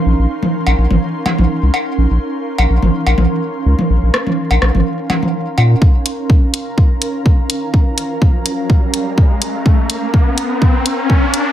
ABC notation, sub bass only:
X:1
M:4/4
L:1/16
Q:"Swing 16ths" 1/4=125
K:Bbm
V:1 name="Sub bass" clef=bass
B,,, B,,, z3 B,,, B,,, A,,, z3 B,,, z C,, z2 | B,,, B,,, z3 B,,, B,,, A,,, z B,,, B,,, z3 D,, z | B,,, B,,, z3 B,,, B,,, A,,, z6 B,, z | z16 |
z16 | z16 |]